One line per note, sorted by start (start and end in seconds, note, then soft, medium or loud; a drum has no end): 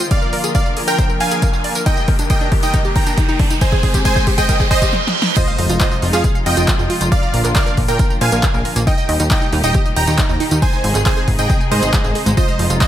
0.00 1.83 F4 medium
0.00 closed hi-hat medium
0.00 tambourine medium
0.00 riser medium
0.11 1.85 D3 medium
0.11 1.85 F3 medium
0.11 3.58 A#3 medium
0.11 1.85 A#4 medium
0.11 0.40 D5 medium
0.11 0.18 F5 loud
0.11 0.40 F5 loud
0.11 kick loud
0.11 closed hi-hat medium
0.11 tambourine medium
0.22 0.29 A#4 medium
0.22 tambourine soft
0.33 0.37 A#4 medium
0.33 open hi-hat loud
0.44 0.50 G#4 medium
0.44 closed hi-hat medium
0.44 tambourine medium
0.55 0.61 A#4 medium
0.55 0.76 D5 medium
0.55 0.76 F5 loud
0.55 kick loud
0.55 closed hi-hat medium
0.55 tambourine medium
0.66 0.72 D5 medium
0.66 tambourine soft
0.77 0.83 G#4 medium
0.77 open hi-hat medium
0.88 0.92 A#4 medium
0.88 1.09 A#4 medium
0.88 1.09 G5 medium
0.88 closed hi-hat medium
0.88 tambourine medium
0.99 1.05 C5 medium
0.99 kick loud
0.99 closed hi-hat medium
0.99 tambourine medium
1.10 1.16 A#4 medium
1.10 tambourine soft
1.20 1.77 F5 medium
1.20 1.77 G#5 loud
1.20 1.25 A#5 medium
1.20 open hi-hat loud
1.31 1.38 G#4 medium
1.31 closed hi-hat medium
1.31 tambourine medium
1.42 1.49 A#4 medium
1.42 kick loud
1.42 closed hi-hat medium
1.42 tambourine medium
1.53 1.60 F5 medium
1.53 tambourine soft
1.64 1.68 D5 medium
1.64 open hi-hat medium
1.75 1.82 A#4 loud
1.75 closed hi-hat medium
1.75 tambourine medium
1.86 4.90 D#3 medium
1.86 3.60 G3 medium
1.86 1.90 D#4 medium
1.86 3.60 G4 medium
1.86 3.60 A#4 medium
1.86 2.15 D#5 medium
1.86 2.15 G5 loud
1.86 kick loud
1.86 closed hi-hat medium
1.86 tambourine medium
1.97 2.04 D#5 loud
1.97 tambourine soft
2.08 2.18 A#4 medium
2.08 kick loud
2.08 open hi-hat loud
2.19 2.26 D4 medium
2.19 closed hi-hat medium
2.19 tambourine medium
2.30 2.37 A#3 medium
2.30 2.52 D#5 medium
2.30 2.52 G5 loud
2.30 kick loud
2.30 closed hi-hat medium
2.30 tambourine medium
2.41 2.48 D4 medium
2.41 tambourine soft
2.52 2.56 G4 medium
2.52 kick loud
2.52 open hi-hat medium
2.63 2.67 D#4 medium
2.63 2.84 D#5 medium
2.63 2.84 G5 medium
2.63 closed hi-hat medium
2.63 tambourine medium
2.74 2.80 D#4 medium
2.74 kick loud
2.74 closed hi-hat medium
2.74 tambourine medium
2.85 2.91 G4 loud
2.85 tambourine soft
2.96 3.00 D#4 medium
2.96 3.53 G5 medium
2.96 3.53 A#5 loud
2.96 kick loud
2.96 open hi-hat loud
3.07 3.13 D4 medium
3.07 closed hi-hat medium
3.07 tambourine medium
3.18 3.24 D#4 medium
3.18 kick loud
3.18 closed hi-hat medium
3.18 tambourine medium
3.28 3.38 D#4 loud
3.28 tambourine soft
3.39 3.46 D4 medium
3.39 kick loud
3.39 open hi-hat medium
3.50 3.54 D#4 medium
3.50 closed hi-hat medium
3.50 tambourine medium
3.61 4.92 G#3 medium
3.61 4.92 C4 medium
3.61 4.92 G#4 medium
3.61 3.90 C5 medium
3.61 4.92 C5 medium
3.61 3.68 D#5 loud
3.61 3.90 G#5 loud
3.61 kick loud
3.61 closed hi-hat medium
3.61 tambourine medium
3.72 3.79 G#4 medium
3.72 kick loud
3.72 tambourine soft
3.83 3.87 G#4 medium
3.83 kick loud
3.83 open hi-hat loud
3.94 4.01 G4 medium
3.94 kick medium
3.94 closed hi-hat medium
3.94 tambourine medium
4.05 4.12 G#4 medium
4.05 4.27 C5 medium
4.05 4.27 G#5 medium
4.05 kick loud
4.05 closed hi-hat medium
4.05 tambourine medium
4.16 4.23 C5 medium
4.16 kick loud
4.16 tambourine soft
4.27 4.34 G4 medium
4.27 kick loud
4.27 open hi-hat medium
4.38 4.42 G#4 medium
4.38 4.59 D#5 medium
4.38 4.59 G5 medium
4.38 kick medium
4.38 closed hi-hat medium
4.38 tambourine medium
4.49 4.56 A#4 medium
4.49 kick loud
4.49 closed hi-hat medium
4.49 tambourine medium
4.49 reverse cymbal medium
4.60 4.67 G#4 medium
4.60 kick loud
4.60 tambourine soft
4.71 4.93 C5 medium
4.71 4.93 D#5 loud
4.71 4.75 G#5 medium
4.71 kick loud
4.71 open hi-hat loud
4.82 4.88 G4 medium
4.82 kick medium
4.82 closed hi-hat medium
4.82 tambourine medium
4.93 snare medium
5.07 snare medium
5.22 snare loud
5.36 7.10 C3 medium
5.36 7.10 F3 medium
5.36 7.10 G#3 medium
5.36 7.10 D#4 medium
5.36 5.43 F4 medium
5.36 8.84 F4 medium
5.36 5.65 C5 medium
5.36 5.65 D#5 loud
5.36 kick loud
5.36 closed hi-hat medium
5.36 crash loud
5.36 tambourine medium
5.36 impact medium
5.48 5.52 F5 loud
5.48 tambourine soft
5.58 5.68 F1 medium
5.58 5.62 F5 medium
5.58 open hi-hat loud
5.70 5.79 F1 medium
5.70 5.79 F4 medium
5.70 closed hi-hat medium
5.70 tambourine medium
5.80 5.87 F4 medium
5.80 6.02 C5 medium
5.80 6.02 D#5 medium
5.80 kick loud
5.80 clap loud
5.80 closed hi-hat medium
5.80 tambourine medium
5.91 5.98 F4 medium
5.91 tambourine soft
6.02 6.12 F1 medium
6.02 6.06 F4 loud
6.02 open hi-hat medium
6.13 6.23 F2 medium
6.13 6.20 F4 medium
6.13 6.35 G#4 medium
6.13 6.35 F5 loud
6.13 closed hi-hat medium
6.13 tambourine medium
6.24 6.31 G#4 loud
6.24 kick loud
6.24 closed hi-hat medium
6.24 tambourine medium
6.35 6.39 F5 loud
6.35 tambourine soft
6.46 6.55 F2 medium
6.46 7.03 D#5 medium
6.46 6.50 F5 medium
6.46 7.03 G5 loud
6.46 open hi-hat loud
6.57 6.66 F1 medium
6.57 6.67 F4 medium
6.57 closed hi-hat medium
6.57 tambourine medium
6.68 6.75 F4 medium
6.68 kick loud
6.68 clap loud
6.68 closed hi-hat medium
6.68 tambourine medium
6.79 6.88 F1 medium
6.79 6.86 F4 medium
6.79 tambourine soft
6.90 6.94 F4 loud
6.90 open hi-hat medium
7.01 7.10 F1 medium
7.01 7.07 F4 medium
7.01 closed hi-hat medium
7.01 tambourine medium
7.12 8.85 A#2 medium
7.12 8.85 D3 medium
7.12 8.85 F3 medium
7.12 8.85 D4 medium
7.12 7.18 A#4 medium
7.12 7.40 D5 medium
7.12 7.40 F5 loud
7.12 kick loud
7.12 closed hi-hat medium
7.12 tambourine medium
7.23 7.29 A#5 medium
7.23 tambourine soft
7.34 7.43 A#1 medium
7.34 7.38 A#5 medium
7.34 open hi-hat loud
7.45 7.54 A#1 medium
7.45 7.54 A#4 medium
7.45 clap soft
7.45 closed hi-hat medium
7.45 tambourine medium
7.55 7.62 A#4 loud
7.55 7.77 D5 medium
7.55 7.77 F5 loud
7.55 kick loud
7.55 clap loud
7.55 closed hi-hat medium
7.55 tambourine medium
7.66 7.70 A#4 loud
7.66 tambourine soft
7.77 7.87 A#1 medium
7.77 7.87 A#4 medium
7.77 kick medium
7.77 open hi-hat medium
7.88 7.98 A#2 medium
7.88 7.95 A#4 medium
7.88 8.10 A#4 medium
7.88 8.10 G5 loud
7.88 closed hi-hat medium
7.88 tambourine medium
7.99 8.06 A#4 medium
7.99 kick loud
7.99 closed hi-hat medium
7.99 tambourine medium
8.10 8.17 A#5 medium
8.10 tambourine soft
8.21 8.31 A#2 medium
8.21 8.28 C5 medium
8.21 8.78 F5 medium
8.21 8.78 G#5 loud
8.21 open hi-hat loud
8.32 8.42 A#1 medium
8.32 8.42 A#4 medium
8.32 closed hi-hat medium
8.32 tambourine medium
8.43 8.50 A#4 loud
8.43 kick loud
8.43 clap loud
8.43 closed hi-hat medium
8.43 tambourine medium
8.54 8.63 A#1 medium
8.54 8.64 A#4 medium
8.54 tambourine soft
8.65 8.72 A#4 medium
8.65 open hi-hat medium
8.76 8.85 A#1 medium
8.76 8.80 A#3 loud
8.76 closed hi-hat medium
8.76 tambourine medium
8.87 10.60 A#2 medium
8.87 12.34 D#3 medium
8.87 10.60 G3 medium
8.87 12.88 D#4 medium
8.87 8.94 D#4 medium
8.87 10.60 G4 medium
8.87 9.16 D#5 medium
8.87 9.16 G5 loud
8.87 kick loud
8.87 closed hi-hat medium
8.87 tambourine soft
8.98 9.02 D#5 loud
8.98 tambourine soft
9.09 9.18 D#2 medium
9.09 9.13 D#5 medium
9.09 open hi-hat loud
9.20 9.29 D#2 medium
9.20 9.30 D#4 medium
9.20 closed hi-hat medium
9.20 tambourine medium
9.31 9.37 D#4 medium
9.31 9.52 D#5 medium
9.31 9.52 G5 loud
9.31 kick loud
9.31 clap loud
9.31 closed hi-hat medium
9.31 tambourine soft
9.42 9.48 D#4 medium
9.42 tambourine soft
9.53 9.62 D#2 medium
9.53 9.57 D#4 loud
9.53 open hi-hat loud
9.64 9.73 D#1 medium
9.64 9.70 D#4 medium
9.64 9.85 D#5 medium
9.64 9.85 G5 medium
9.64 closed hi-hat medium
9.64 tambourine medium
9.74 9.81 G4 loud
9.74 kick loud
9.74 closed hi-hat medium
9.74 tambourine medium
9.85 9.89 D#5 loud
9.85 tambourine soft
9.96 10.06 D#1 medium
9.96 10.00 D#5 medium
9.96 10.53 G5 medium
9.96 10.53 A#5 loud
9.96 open hi-hat loud
10.07 10.17 D#2 medium
10.07 10.17 D#4 medium
10.07 closed hi-hat medium
10.07 tambourine medium
10.18 10.25 D#4 medium
10.18 kick loud
10.18 clap loud
10.18 closed hi-hat medium
10.18 tambourine medium
10.29 10.39 D#2 medium
10.29 10.36 D#4 medium
10.29 tambourine soft
10.40 10.44 D#4 loud
10.40 open hi-hat loud
10.51 10.61 D#2 medium
10.51 10.58 D#4 medium
10.51 closed hi-hat medium
10.51 tambourine medium
10.62 12.36 C3 medium
10.62 12.88 G#3 medium
10.62 12.36 G#4 medium
10.62 10.69 G#4 medium
10.62 10.91 C5 medium
10.62 10.91 G#5 loud
10.62 kick loud
10.62 closed hi-hat medium
10.62 tambourine medium
10.73 10.80 G#5 medium
10.73 tambourine soft
10.84 10.93 G#1 medium
10.84 10.88 G#5 medium
10.84 open hi-hat loud
10.95 11.04 G#1 medium
10.95 11.05 G#4 medium
10.95 clap soft
10.95 closed hi-hat medium
10.95 tambourine medium
11.06 11.12 G#4 loud
11.06 11.27 C5 medium
11.06 11.27 G#5 loud
11.06 kick loud
11.06 clap loud
11.06 closed hi-hat medium
11.06 tambourine soft
11.17 11.21 G#4 loud
11.17 tambourine soft
11.28 11.37 G#1 loud
11.28 11.37 G#4 medium
11.28 kick medium
11.28 open hi-hat loud
11.39 11.48 G#2 medium
11.39 11.45 G#4 medium
11.39 11.60 D#5 medium
11.39 11.60 G5 loud
11.39 closed hi-hat medium
11.39 tambourine medium
11.49 11.56 G#4 medium
11.49 kick loud
11.49 closed hi-hat medium
11.49 tambourine medium
11.60 11.67 G#5 medium
11.60 tambourine soft
11.71 11.81 G#2 loud
11.71 11.78 A#4 medium
11.71 12.29 C5 medium
11.71 12.29 D#5 loud
11.71 open hi-hat loud
11.82 11.92 G#1 medium
11.82 11.92 G#4 medium
11.82 closed hi-hat medium
11.82 tambourine medium
11.93 12.00 G#4 loud
11.93 kick loud
11.93 clap loud
11.93 closed hi-hat medium
11.93 tambourine medium
12.04 12.14 G#1 medium
12.04 12.14 G#4 medium
12.04 tambourine soft
12.15 12.22 G#4 medium
12.15 open hi-hat medium
12.26 12.36 G#1 medium
12.26 12.30 G#3 loud
12.26 closed hi-hat medium
12.26 tambourine medium
12.37 12.88 C3 medium
12.37 12.88 F3 medium
12.37 12.44 F4 medium
12.37 12.88 F4 medium
12.37 12.66 C5 medium
12.37 12.66 D#5 loud
12.37 kick loud
12.37 closed hi-hat medium
12.37 tambourine medium
12.48 12.52 F5 loud
12.48 tambourine soft
12.59 12.69 F1 medium
12.59 12.63 F5 medium
12.59 open hi-hat loud
12.70 12.79 F1 medium
12.70 12.80 F4 medium
12.70 closed hi-hat medium
12.70 tambourine medium
12.81 12.88 F4 medium
12.81 12.88 C5 medium
12.81 12.88 D#5 loud
12.81 kick loud
12.81 clap loud
12.81 closed hi-hat medium
12.81 tambourine medium